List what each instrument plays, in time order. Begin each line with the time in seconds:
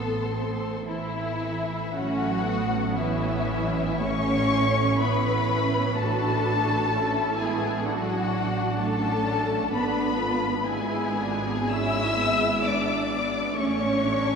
Already playing: double bass section A1, cello section A2, viola section B3, violin section A4 C6
0.27 viola section C4
0.85 cello section E3, viola section E4, violin section E4 E5
1.95 double bass section A1, cello section F#3, viola section A3 C#4, violin section F#4 F#5
2.47 viola section B3
2.96 cello section E3, viola section C#4, violin section E4 E5
4.02 viola section A3 C#4, cello section C#4, violin section C#5 C#6
5.00 viola section B3 E4, cello section B3, violin section B4 B5
5.49 viola section C#4
5.97 double bass section A1, cello section A3, viola section D4 F#4, violin section A4 A5
6.46 viola section F#4
6.94 viola section C#4 E4
7.39 cello section G#3, viola section B3, violin section G#4 G#5
7.87 cello section F#3, viola section D4, violin section F#4 F#5
8.80 cello section A3, viola section C#4, violin section A4 A5
9.74 double bass section G#1, viola section B3 D4, cello section B3, violin section B4 B5
10.20 viola section F4
10.66 cello section G#3, viola section B3 E4, violin section G#4 G#5
11.17 viola section D4
11.70 viola section G#3 C#4, cello section E4, violin section E5 E6
12.19 viola section B3
12.65 viola section B3, cello section D4, violin section D5 D6
13.11 viola section B3
13.55 double bass section A1, viola section A3 C#4, cello section C#4, violin section C#5 C#6
13.99 viola section D4